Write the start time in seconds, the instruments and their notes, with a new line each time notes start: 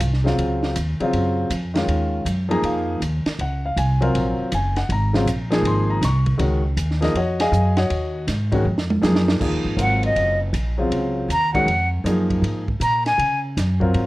0.00 upright bass C2, hi-hat pedal, ride
0.13 snare
0.23 grand piano C#3 F#3 C4 F4, snare
0.38 upright bass C#2, ride
0.63 snare
0.76 upright bass D#2, hi-hat pedal, ride
1.00 grand piano C#3 F#3 C4 F4, muted upright bass stroke, ride
1.13 upright bass F#2, ride
1.50 upright bass F2, hi-hat pedal, ride
1.74 grand piano D#3 G#3 C#4 F4, snare, ride
1.88 upright bass D#2, ride
2.25 upright bass F#2, hi-hat pedal, ride
2.49 grand piano F3 A#3 D#4 G#4 A#5, ride
2.62 upright bass F2, grand piano F5, ride
3.01 upright bass D#2, hi-hat pedal, ride
3.26 muted upright bass stroke, snare, ride
3.39 upright bass C#2, grand piano F#5, ride
3.65 grand piano F5
3.76 upright bass C2, grand piano G#5, hi-hat pedal, ride
4.01 grand piano F#3 C4 F4 A#4, ride
4.15 upright bass A#1, ride
4.39 muted upright bass stroke
4.52 upright bass F#1, grand piano G#5, hi-hat pedal, ride
4.76 grand piano F#5, snare, ride
4.89 upright bass G#1, grand piano A#5, ride
5.13 grand piano C#3 F#3 C4 F4, snare
5.26 upright bass A#1, hi-hat pedal, ride
5.50 grand piano F3 A#3 D#4 G#4, snare, ride
5.63 upright bass G#1, ride
5.67 grand piano C6
5.90 grand piano A#5
6.01 upright bass C2, grand piano C#6, snare, hi-hat pedal, ride
6.26 kick, ride
6.38 upright bass C#2, grand piano D#3 G#3 C#4 F#4, ride
6.77 upright bass D#2, hi-hat pedal, ride
6.91 snare
7.01 grand piano F3 A#3 D#4 G#4 A#4 D#5, snare, ride
7.14 upright bass F2, grand piano F#4 C#5 D#5 F#5, ride
7.40 grand piano G#4 D#5 F5 G#5, snare, ride
7.52 upright bass F#2, hi-hat pedal
7.77 grand piano F#4 C#5 D#5 F#5, snare, ride
7.90 upright bass D#2, ride
8.27 upright bass G#2, snare, hi-hat pedal, ride
8.52 grand piano D#3 G#3 C#4 F#4, kick, ride
8.65 upright bass F2
8.78 snare
8.91 high tom
9.02 upright bass F#2, grand piano F3 A#3 D#4 G#4, snare, hi-hat pedal
9.16 snare
9.29 snare
9.40 upright bass D#2, grand piano F3 A#3 D#4 G#4, kick, crash
9.52 upright bass C#2
9.65 upright bass G#1
9.77 upright bass G#1, grand piano F#3 C4 F4 A#4, hi-hat pedal, ride
9.81 flute F#5
10.03 flute D#5, ride
10.16 upright bass F#1, ride
10.53 upright bass A#1, hi-hat pedal, ride
10.78 grand piano C#3 F#3 C4 F4
10.90 upright bass C#2, ride
11.28 upright bass D#2, flute A#5, hi-hat pedal, ride
11.54 grand piano D#3 G#3 C#4 F#4, flute F#5, kick, ride
11.66 upright bass F2, ride
12.04 upright bass F#2, grand piano F3 A#3 D#4 G#4, hi-hat pedal, ride
12.30 kick, ride
12.42 upright bass G#2, ride
12.68 kick
12.80 upright bass A#2, flute A#5, hi-hat pedal, ride
13.06 flute G#5, snare, ride
13.18 upright bass C#3, ride
13.57 upright bass F#2, snare, hi-hat pedal, ride
13.80 grand piano F#3 C4 F4 A#4, kick
13.94 upright bass G#2, ride